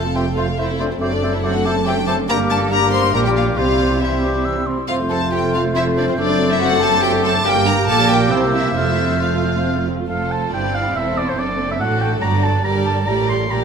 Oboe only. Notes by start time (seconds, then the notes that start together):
0.15 C5
0.37 C5
0.58 C5
0.80 C5
1.01 C5
1.24 C5
1.45 C5
1.66 C5
1.87 C5
2.07 C5
2.29 A#4
2.71 A#4
3.13 A#4
3.58 C5
4.01 C5
4.89 C5
7.45 A#4
8.31 C5
10.09 F5
10.31 A5
10.54 G5
10.75 F5
10.96 E5
11.18 D5
11.29 C5
11.39 D5
11.71 E5
11.80 F#5
12.01 G5
12.22 A#5
12.43 A5
12.64 A#5
12.85 A5
13.07 A#5
13.29 C6
13.51 A#5